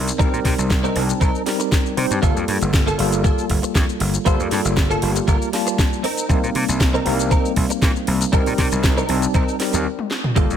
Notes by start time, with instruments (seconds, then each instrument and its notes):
Already playing: slap bass C2, tine electric piano G3 C4 D#4 A#4
0.08 closed hi-hat, shaker
0.18 slap bass C2, tine electric piano G3 C4 D#4 A#4, clean electric guitar C4 D#4 A#4, kick, closed hi-hat, shaker
0.33 slap bass A#2, shaker
0.44 slap bass C3, muted clean electric guitar stroke, kick, snare, open hi-hat
0.58 slap bass C2, closed hi-hat, shaker
0.70 kick, snare, closed hi-hat, shaker
0.83 clean electric guitar C4 D#4 A#4, shaker
0.95 slap bass C2, tine electric piano G3 C4 D#4 A5, open hi-hat
1.09 closed hi-hat, shaker
1.20 slap bass C2, clean electric guitar C4 D#4 A#4, kick, closed hi-hat, shaker
1.35 shaker
1.46 tine electric piano G3 C4 D#4 A#4, snare, open hi-hat
1.59 muted clean electric guitar stroke, closed hi-hat, shaker
1.71 muted clean electric guitar stroke, kick, snare, closed hi-hat, shaker
1.86 shaker
1.97 slap bass C3, tine electric piano G3 C4 D#4 C5, muted clean electric guitar stroke, open hi-hat
2.11 slap bass G2, closed hi-hat, shaker
2.22 slap bass G1, tine electric piano G3 A#3 F4 A4, clean electric guitar A#3 F4 A4, kick, closed hi-hat, shaker
2.36 slap bass F2, shaker
2.47 slap bass G2, muted clean electric guitar stroke, open hi-hat
2.62 slap bass G1, closed hi-hat, shaker
2.73 kick, snare, closed hi-hat, shaker
2.86 clean electric guitar A#3 F4 A4, shaker
2.98 slap bass G1, tine electric piano G3 A#3 F4 A4, open hi-hat
3.12 closed hi-hat, shaker
3.24 clean electric guitar A#3 F4 A4, kick, closed hi-hat, shaker
3.38 shaker
3.50 slap bass G1, kick, open hi-hat
3.62 muted clean electric guitar stroke, closed hi-hat, shaker
3.75 slap bass F2, muted clean electric guitar stroke, kick, snare, closed hi-hat, shaker
3.89 shaker
4.00 slap bass G1, muted clean electric guitar stroke, open hi-hat
4.14 closed hi-hat, shaker
4.25 slap bass G1, tine electric piano G3 A#3 F4 A4, clean electric guitar A#3 F4 C5, kick, closed hi-hat, shaker
4.40 slap bass F2, shaker
4.51 slap bass G2, muted clean electric guitar stroke, snare, open hi-hat
4.65 slap bass G1, closed hi-hat, shaker
4.77 kick, snare, closed hi-hat, shaker
4.90 clean electric guitar A#3 F4 A4, shaker
5.02 slap bass G1, tine electric piano G3 A#3 F4 G4, open hi-hat
5.16 closed hi-hat, shaker
5.27 slap bass G1, clean electric guitar A#3 F4 A#4, kick, closed hi-hat, shaker
5.42 shaker
5.53 tine electric piano G3 A#3 F4 A5, snare, open hi-hat
5.66 muted clean electric guitar stroke, closed hi-hat, shaker
5.78 muted clean electric guitar stroke, kick, snare, closed hi-hat, shaker
5.93 shaker
6.03 clean electric guitar C4 D#4 A#4, open hi-hat
6.17 closed hi-hat, shaker
6.29 slap bass C2, tine electric piano G3 A#3 C4 D#4, kick, closed hi-hat, shaker
6.43 slap bass A#2, shaker
6.54 slap bass C3, muted clean electric guitar stroke, open hi-hat
6.68 slap bass C2, closed hi-hat, shaker
6.80 kick, snare, closed hi-hat, shaker
6.93 clean electric guitar C4 D#4 A#4, shaker
7.05 slap bass C2, tine electric piano G3 A#3 C4 D#4, open hi-hat
7.19 closed hi-hat, shaker
7.30 clean electric guitar C4 D#4 A#4, kick, closed hi-hat, shaker
7.45 shaker
7.56 slap bass C2, kick, open hi-hat
7.69 muted clean electric guitar stroke, closed hi-hat, shaker
7.82 slap bass A#2, muted clean electric guitar stroke, kick, snare, closed hi-hat, shaker
7.96 shaker
8.07 slap bass C2, muted clean electric guitar stroke, open hi-hat
8.21 closed hi-hat, shaker
8.32 slap bass C2, tine electric piano G3 C4 D#4 A#4, clean electric guitar C4 D#4 A#4, kick, closed hi-hat, shaker
8.46 slap bass A#2, open hi-hat, shaker
8.58 slap bass C3, muted clean electric guitar stroke, kick, snare, open hi-hat
8.72 slap bass C2, closed hi-hat, shaker
8.84 kick, snare, closed hi-hat, shaker
8.96 clean electric guitar C4 D#4 A#4, shaker
9.09 slap bass C2, tine electric piano G3 C4 D#4 A5, open hi-hat
9.22 closed hi-hat, shaker
9.34 slap bass C2, clean electric guitar C4 D#4 A#4, kick, closed hi-hat, shaker
9.48 shaker
9.60 tine electric piano G3 C4 D#4 A#4, snare, open hi-hat
9.73 slap bass D#2, muted clean electric guitar stroke, closed hi-hat, shaker
9.99 high tom
10.11 snare
10.24 mid tom
10.35 slap bass G1, tine electric piano G3 A#3 F4 A4, clean electric guitar A#3 F4 G4 A4, kick, closed hi-hat, impact, shaker
10.50 slap bass F2, shaker